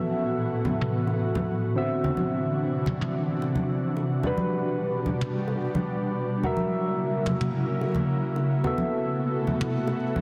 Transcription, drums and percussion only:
0.65 high bongo, high conga, low conga
0.81 mid tom
1.07 high bongo
1.35 high conga, low conga
2.04 low conga
2.17 high conga
2.86 mid tom, high bongo, high conga, low conga
3.01 mid tom
3.42 high bongo
3.55 high conga, low conga
3.97 high bongo
4.23 low conga
4.37 high conga
5.06 high bongo, high conga, low conga
5.21 mid tom
5.48 high bongo
5.75 high conga, low conga
6.43 low conga
6.57 high conga
7.26 mid tom, high bongo, high conga, low conga
7.41 mid tom
7.81 high bongo
7.95 high conga, low conga
8.36 high bongo
8.64 low conga
8.78 high conga
9.47 high bongo, high conga, low conga
9.61 mid tom
9.87 high bongo
10.16 high conga, low conga

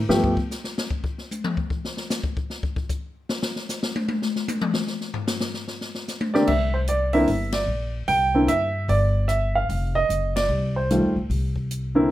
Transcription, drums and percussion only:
0.10 snare
0.24 kick
0.37 kick
0.51 snare, hi-hat pedal
0.64 snare
0.78 snare
0.90 kick
1.04 kick
1.18 snare
1.31 hi-hat pedal, high tom
1.44 mid tom
1.57 kick
1.70 kick
1.85 snare
1.97 snare
2.10 snare, hi-hat pedal
2.23 kick
2.37 kick
2.50 snare
2.63 kick
2.76 kick
2.89 kick, hi-hat pedal
3.29 snare
3.43 snare
3.56 snare
3.69 snare, hi-hat pedal
3.83 snare
3.96 high tom
4.08 high tom
4.22 snare
4.36 snare
4.48 hi-hat pedal, high tom
4.61 mid tom
4.74 snare
4.87 snare
5.01 snare
5.14 floor tom
5.27 snare, hi-hat pedal
5.40 snare
5.54 snare
5.68 snare
5.81 snare
5.95 snare
6.08 snare, hi-hat pedal
6.21 high tom
6.35 snare
6.47 kick, crash
6.88 closed hi-hat
7.13 open hi-hat
7.28 kick, open hi-hat
7.52 snare, ride
8.08 kick, open hi-hat
8.48 closed hi-hat
8.89 kick, open hi-hat
9.29 cross-stick, closed hi-hat
9.69 kick, open hi-hat
10.10 closed hi-hat
10.36 snare, ride
10.90 cross-stick, closed hi-hat
11.30 kick, open hi-hat
11.56 kick
11.71 closed hi-hat

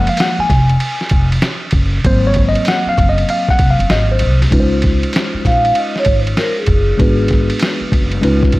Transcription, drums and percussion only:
0.07 ride
0.17 snare, hi-hat pedal, ride
0.50 kick, snare, ride
0.69 ride
0.80 ride
1.01 snare
1.09 kick, ride
1.32 ride
1.42 snare, hi-hat pedal, ride
1.71 kick, ride
2.04 kick, ride
2.34 kick, ride
2.55 ride
2.65 snare, hi-hat pedal, ride
2.98 kick, ride
3.18 ride
3.29 ride
3.48 kick, snare
3.59 kick, ride
3.80 ride
3.90 snare, hi-hat pedal, ride
4.19 ride
4.42 snare, ride
4.52 kick, ride
4.82 kick, snare, ride
5.03 ride
5.13 snare, hi-hat pedal, ride
5.45 kick, snare, ride
5.65 ride
5.75 ride
5.96 snare
6.05 kick, ride
6.27 ride
6.37 snare, hi-hat pedal, ride
6.66 kick, ride
6.99 kick, ride
7.28 kick, snare, ride
7.50 ride
7.59 snare, hi-hat pedal, ride
7.92 kick, ride
8.12 ride
8.23 ride
8.43 kick, snare
8.52 kick, ride

